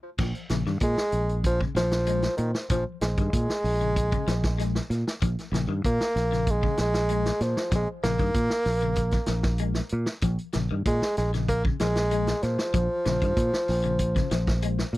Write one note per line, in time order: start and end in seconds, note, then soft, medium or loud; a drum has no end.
0.18 0.32 A#1 loud
0.18 0.39 F3 medium
0.18 kick loud
0.18 snare soft
0.18 crash medium
0.35 closed hi-hat soft
0.49 0.63 A#1 medium
0.49 0.61 C#3 medium
0.49 snare medium
0.49 closed hi-hat medium
0.66 0.79 G2 medium
0.66 0.87 D#3 medium
0.66 snare soft
0.80 0.94 A#2 loud
0.80 1.41 G#3 loud
0.80 kick medium
0.80 closed hi-hat medium
0.97 snare medium
1.12 1.64 A#1 medium
1.12 closed hi-hat medium
1.29 closed hi-hat soft
1.44 1.60 F3 loud
1.44 kick medium
1.44 closed hi-hat medium
1.61 1.71 C#3 medium
1.61 kick medium
1.75 2.26 A#1 medium
1.75 2.35 F3 loud
1.75 1.97 F3 medium
1.75 snare medium
1.75 closed hi-hat medium
1.91 snare medium
1.91 closed hi-hat soft
2.06 2.27 G#3 medium
2.06 closed hi-hat medium
2.22 snare medium
2.22 closed hi-hat soft
2.37 2.52 A#2 loud
2.37 2.52 D#3 medium
2.37 closed hi-hat medium
2.54 snare medium
2.69 2.83 A#1 loud
2.69 2.85 F3 medium
2.69 2.91 F3 medium
2.69 kick loud
2.69 closed hi-hat medium
3.01 3.15 A#1 medium
3.01 4.86 G#3 loud
3.01 snare medium
3.01 closed hi-hat medium
3.17 3.30 G2 medium
3.17 3.38 D#3 medium
3.17 kick medium
3.17 closed hi-hat soft
3.33 3.46 A#2 loud
3.33 kick medium
3.33 closed hi-hat medium
3.50 snare medium
3.64 4.15 A#1 medium
3.64 open hi-hat medium
3.81 4.01 C#3 medium
3.81 closed hi-hat soft
3.96 kick medium
3.96 closed hi-hat medium
4.12 4.22 C#3 medium
4.12 kick medium
4.12 closed hi-hat soft
4.27 4.78 A#1 medium
4.27 4.48 F3 medium
4.27 snare medium
4.27 closed hi-hat medium
4.44 kick medium
4.44 snare medium
4.58 4.79 G#3 medium
4.58 snare soft
4.58 closed hi-hat medium
4.75 snare medium
4.90 5.03 A#2 loud
4.90 snare soft
4.90 closed hi-hat medium
5.07 snare medium
5.22 5.35 A#1 loud
5.22 5.42 F3 medium
5.22 kick loud
5.22 closed hi-hat medium
5.38 snare soft
5.38 closed hi-hat soft
5.52 5.65 A#1 loud
5.52 5.63 C#3 medium
5.52 snare medium
5.52 closed hi-hat soft
5.68 5.80 G2 medium
5.68 5.89 D#3 medium
5.84 5.98 A#2 loud
5.84 6.52 A#3 loud
5.84 kick medium
5.84 closed hi-hat medium
6.01 snare medium
6.16 6.67 A#1 medium
6.16 snare soft
6.16 closed hi-hat medium
6.32 6.52 C#3 medium
6.32 snare soft
6.32 closed hi-hat soft
6.47 kick medium
6.47 closed hi-hat medium
6.51 6.80 G#3 loud
6.63 6.73 C#3 medium
6.63 kick medium
6.77 7.30 A#1 medium
6.77 7.44 G#3 loud
6.77 snare medium
6.77 closed hi-hat medium
6.94 snare medium
6.94 closed hi-hat soft
7.09 7.30 G#3 medium
7.09 closed hi-hat medium
7.25 snare medium
7.25 closed hi-hat soft
7.41 7.54 A#2 loud
7.41 7.73 F3 medium
7.41 snare soft
7.41 closed hi-hat medium
7.57 snare medium
7.72 7.85 A#1 loud
7.72 7.92 F3 medium
7.72 kick loud
7.72 snare soft
7.72 closed hi-hat medium
7.76 7.89 G#3 medium
8.03 8.17 A#1 loud
8.03 8.14 C#3 medium
8.03 9.88 A#3 loud
8.03 snare medium
8.03 closed hi-hat medium
8.19 8.32 G2 medium
8.19 8.40 D#3 medium
8.19 kick medium
8.19 closed hi-hat soft
8.35 8.48 A#2 loud
8.35 kick medium
8.35 closed hi-hat medium
8.50 snare medium
8.65 9.17 A#1 medium
8.65 snare soft
8.65 open hi-hat medium
8.80 9.02 C#3 medium
8.80 closed hi-hat soft
8.96 kick medium
8.96 closed hi-hat medium
9.11 muted clean electric guitar stroke medium
9.11 kick medium
9.11 snare soft
9.11 closed hi-hat soft
9.26 9.80 A#1 medium
9.26 9.49 F3 medium
9.26 snare medium
9.26 closed hi-hat medium
9.43 kick medium
9.43 snare medium
9.58 9.80 G#3 medium
9.58 closed hi-hat medium
9.74 snare medium
9.89 10.05 A#2 medium
9.89 closed hi-hat medium
10.06 snare medium
10.21 10.36 A#1 loud
10.21 10.43 F3 loud
10.21 kick loud
10.21 closed hi-hat medium
10.38 closed hi-hat soft
10.53 10.68 A#1 loud
10.53 10.65 C#3 medium
10.53 snare medium
10.53 closed hi-hat medium
10.71 10.83 G2 medium
10.71 10.91 D#3 medium
10.85 10.99 A#2 loud
10.85 11.16 G#3 loud
10.85 kick medium
10.85 closed hi-hat medium
11.02 snare medium
11.17 11.69 A#1 medium
11.17 11.32 G#3 medium
11.17 snare soft
11.17 closed hi-hat medium
11.33 11.54 C#3 medium
11.33 snare soft
11.33 closed hi-hat soft
11.48 11.63 A#3 loud
11.48 kick medium
11.48 closed hi-hat medium
11.65 11.75 C#3 medium
11.65 kick medium
11.79 12.32 A#1 medium
11.79 12.01 F3 medium
11.79 12.44 G#3 loud
11.79 snare medium
11.79 closed hi-hat medium
11.95 snare medium
11.95 closed hi-hat soft
12.11 12.32 G#3 medium
12.11 closed hi-hat medium
12.27 snare medium
12.27 closed hi-hat soft
12.42 12.56 A#2 loud
12.42 14.94 F3 loud
12.42 snare soft
12.42 closed hi-hat medium
12.59 snare medium
12.74 12.87 A#1 loud
12.74 12.94 F3 medium
12.74 kick loud
12.74 closed hi-hat medium
13.05 13.19 A#1 medium
13.05 13.16 C#3 medium
13.05 snare medium
13.05 closed hi-hat medium
13.22 13.34 G2 medium
13.22 13.42 D#3 medium
13.22 kick medium
13.22 closed hi-hat soft
13.37 13.50 A#2 loud
13.37 kick medium
13.37 closed hi-hat medium
13.53 snare medium
13.68 14.20 A#1 medium
13.68 snare soft
13.68 open hi-hat medium
13.84 14.04 C#3 medium
13.84 closed hi-hat soft
13.99 kick medium
13.99 closed hi-hat medium
14.16 14.26 C#3 medium
14.16 kick medium
14.16 snare soft
14.16 closed hi-hat soft
14.31 14.82 A#1 loud
14.31 14.51 F3 medium
14.31 snare medium
14.31 closed hi-hat medium
14.47 kick medium
14.47 snare medium
14.62 14.83 G#3 medium
14.62 closed hi-hat medium
14.79 snare medium
14.93 14.98 A#2 loud
14.93 closed hi-hat medium